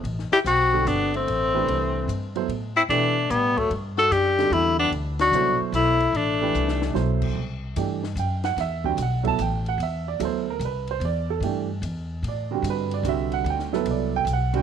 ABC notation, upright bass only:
X:1
M:3/4
L:1/8
Q:"Swing" 1/4=148
K:Ador
V:1 name="Upright bass" clef=bass
A,,, z B,,,2 G,,,2 | A,,,2 C,,2 G,,2 | A,,2 B,,2 A,,2 | G,,2 F,,2 E,,2 |
D,,2 C,, z B,,,2 | A,,,2 C,,2 B,,,2 | C,,2 G,,2 F,,2 | E,,2 B,,,2 A,,,2 |
E,,2 D,,2 C,,2 | E,,2 G,,2 E,,2 | A,,2 G,,2 C,,2 | D,,2 C,,2 B,,,2 |]